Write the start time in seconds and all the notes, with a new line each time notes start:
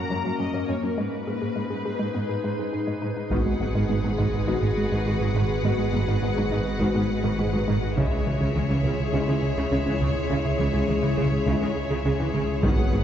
Already playing: A#3 C#4 F#4 A#4 A#5
0.10 F#2 F#3
0.25 F#2 F#4
0.40 F#2 C#4 D#5
0.54 F#2 F#3
0.68 F#2 C#4 C#5
0.83 F#2 C#4 A#4
0.97 G#2 G#3 D#4 G#4 B4
1.26 G#2 G#4
1.42 G#2 G#4
1.56 G#2 G#3
1.70 G#2 G#4
1.85 G#2 G#4
1.99 G#2 G#3
2.15 G#2 B3
2.29 G#2 G#4
2.44 G#2 G#3
2.59 G#2 G#4
2.73 G#2 D#4
2.87 G#2 G#3
3.02 G#2 D#4
3.16 G#2 D#4
3.30 G#1 G#2 D#3 G#3 B3 F#4 G#4 B4 F#5, taiko
3.46 G#3
3.59 G#1 G#2 F#3 B3
3.75 G#2 D#3 G#3
3.89 G#1 G#2 G#3 B3
4.04 G#2 F#3 G#3 D#4
4.18 G#1 G#2 D#3 G#3, taiko
4.34 G#2
4.47 G#1 G#2 D#3 G#3 B3 F#4
4.62 G#2 G#3 B3
4.77 G#3
4.92 G#2 D#3 G#3
5.06 G#1 G#2 G#3 F#4
5.21 G#2 F#3 F#4
5.34 G#1 G#2 D#3 G#3
5.49 G#2
5.63 G#1 G#2 D#3 G#3 B3 F#4
5.78 G#3
5.93 G#1 G#2 F#3 B3
6.08 G#2 D#3 G#3
6.22 G#1 G#2 G#3 B3
6.37 G#2 F#3 G#3 D#4
6.51 G#1 G#2 D#3 G#3
6.66 G#2
6.80 G#1 G#2 D#3 G#3 B3 F#4
6.94 G#2 G#3 B3
7.11 G#3
7.23 G#2 D#3 G#3
7.39 G#1 G#2 G#3 F#4
7.53 G#2 F#3 F#4
7.68 G#1 G#2 D#3 G#3
7.83 G#2
7.97 C#2 C#3 G#3 E4 G#4 C#5 E5, taiko
8.12 C#3
8.26 C#2 C#3 E3
8.41 C#2 C#3
8.55 C#2 C#3 E3 G#3
8.70 C#3 E3 G#3
8.83 C#2 C#3
8.99 C#2
9.12 C#2 C#3 G#3 E4
9.28 C#2 C#3 E3 G#3
9.43 C#3
9.57 C#2 C#3
9.72 C#2 C#3 G#3 C#4
9.86 C#2 C#3 E3 C#4
10.00 C#2 C#3
10.16 C#2
10.30 C#2 C#3 G#3 E4
10.45 C#3
10.59 C#2 C#3 E3
10.73 C#2 C#3
10.88 C#2 C#3 E3 G#3
11.02 C#3 E3 G#3
11.17 C#2 C#3
11.31 C#2
11.46 C#2 C#3 G#3 E4
11.61 C#2 C#3 E3 G#3
11.75 C#3
11.90 C#2 C#3
12.04 C#2 C#3 G#3 C#4
12.20 C#2 C#3 E3 C#4
12.34 C#2 C#3
12.49 C#2
12.62 G#1 G#2 D#3 G#3 B3 F#4 G#4 B4 F#5, taiko
12.79 G#3
12.92 G#1 G#2 F#3 B3